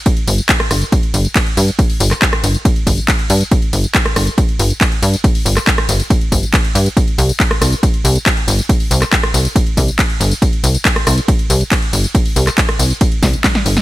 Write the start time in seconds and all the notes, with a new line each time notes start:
0.06 kick, closed hi-hat, ride, tambourine
0.17 closed hi-hat
0.28 G1, open hi-hat, tambourine
0.38 closed hi-hat, tambourine
0.49 kick, clap, closed hi-hat, ride, tambourine
0.60 cross-stick, closed hi-hat
0.71 G1, cross-stick, open hi-hat, tambourine
0.82 tambourine
0.92 kick, closed hi-hat, ride, tambourine
1.03 closed hi-hat
1.14 G1, open hi-hat, tambourine
1.25 closed hi-hat, tambourine
1.36 kick, clap, closed hi-hat, ride, tambourine
1.47 closed hi-hat
1.57 G2, open hi-hat, tambourine
1.68 closed hi-hat, tambourine
1.79 kick, closed hi-hat, ride, tambourine
1.90 open hi-hat
2.00 G1, open hi-hat, tambourine
2.11 cross-stick, clap, closed hi-hat, tambourine
2.22 kick, clap, closed hi-hat, ride, tambourine
2.33 cross-stick, closed hi-hat
2.44 G1, open hi-hat, tambourine
2.54 closed hi-hat, tambourine
2.65 kick, closed hi-hat, ride, tambourine
2.76 closed hi-hat
2.87 G1, kick, open hi-hat, tambourine
2.98 closed hi-hat, tambourine
3.08 kick, clap, closed hi-hat, ride, tambourine
3.19 closed hi-hat
3.30 G2, open hi-hat, tambourine
3.41 closed hi-hat, tambourine
3.51 kick, closed hi-hat, ride, tambourine
3.62 closed hi-hat
3.73 G1, open hi-hat, tambourine
3.84 closed hi-hat, tambourine
3.95 kick, clap, closed hi-hat, ride, tambourine
4.06 cross-stick, closed hi-hat
4.16 G1, cross-stick, open hi-hat, tambourine
4.27 closed hi-hat, tambourine
4.38 kick, closed hi-hat, ride, tambourine
4.49 closed hi-hat
4.59 G1, open hi-hat, tambourine
4.70 closed hi-hat, tambourine
4.81 kick, clap, closed hi-hat, ride, tambourine
4.92 closed hi-hat
5.02 G2, open hi-hat, tambourine
5.14 closed hi-hat, tambourine
5.24 kick, closed hi-hat, ride, tambourine
5.35 open hi-hat
5.46 G1, open hi-hat, tambourine
5.57 cross-stick, clap, closed hi-hat, tambourine
5.67 kick, clap, closed hi-hat, ride, tambourine
5.78 cross-stick, closed hi-hat
5.89 G1, open hi-hat, tambourine
6.00 closed hi-hat, tambourine
6.10 kick, closed hi-hat, ride, tambourine
6.21 closed hi-hat
6.32 G1, kick, open hi-hat, tambourine
6.43 closed hi-hat, tambourine
6.53 kick, clap, closed hi-hat, ride, tambourine
6.65 closed hi-hat
6.75 G2, open hi-hat, tambourine
6.86 closed hi-hat, tambourine
6.97 kick, closed hi-hat, ride, tambourine
7.08 closed hi-hat
7.18 C2, open hi-hat, tambourine
7.29 closed hi-hat, tambourine
7.40 kick, clap, closed hi-hat, ride
7.51 cross-stick, closed hi-hat
7.61 C2, cross-stick, open hi-hat, tambourine
7.72 closed hi-hat, tambourine
7.83 kick, closed hi-hat, ride, tambourine
7.94 closed hi-hat
8.05 C2, open hi-hat, tambourine
8.16 closed hi-hat, tambourine
8.26 kick, clap, closed hi-hat, ride, tambourine
8.37 closed hi-hat
8.48 G1, open hi-hat, tambourine
8.59 closed hi-hat, tambourine
8.69 kick, closed hi-hat, ride, tambourine
8.80 open hi-hat
8.91 C2, open hi-hat, tambourine
9.02 cross-stick, clap, closed hi-hat, tambourine
9.12 kick, clap, closed hi-hat, ride, tambourine
9.23 cross-stick, closed hi-hat
9.34 C2, open hi-hat, tambourine
9.45 closed hi-hat, tambourine
9.56 kick, closed hi-hat, ride, tambourine
9.67 closed hi-hat
9.77 C2, kick, open hi-hat, tambourine
9.88 closed hi-hat, tambourine
9.99 kick, clap, closed hi-hat, ride, tambourine
10.10 closed hi-hat
10.20 G1, open hi-hat, tambourine
10.31 closed hi-hat, tambourine
10.42 kick, closed hi-hat, ride, tambourine
10.53 closed hi-hat
10.64 C2, open hi-hat, tambourine
10.75 closed hi-hat, tambourine
10.85 kick, clap, closed hi-hat, ride, tambourine
10.96 cross-stick, closed hi-hat
11.07 C2, cross-stick, open hi-hat, tambourine
11.18 closed hi-hat, tambourine
11.28 kick, closed hi-hat, ride, tambourine
11.39 closed hi-hat
11.50 C2, open hi-hat, tambourine
11.61 closed hi-hat, tambourine
11.71 kick, clap, closed hi-hat, ride, tambourine
11.82 closed hi-hat
11.93 G1, open hi-hat, tambourine
12.04 closed hi-hat, tambourine
12.15 kick, closed hi-hat, ride, tambourine
12.26 open hi-hat
12.36 C2, open hi-hat, tambourine
12.47 cross-stick, clap, closed hi-hat, tambourine
12.58 kick, clap, closed hi-hat, ride, tambourine
12.69 cross-stick, closed hi-hat
12.79 C2, open hi-hat, tambourine
12.90 closed hi-hat, tambourine
13.01 kick, closed hi-hat, ride, tambourine
13.12 closed hi-hat
13.23 C2, kick, snare, open hi-hat, tambourine
13.33 closed hi-hat, tambourine
13.44 kick, snare, clap, closed hi-hat, ride, tambourine
13.55 snare, closed hi-hat
13.66 G1, open hi-hat, tambourine
13.77 snare, closed hi-hat, tambourine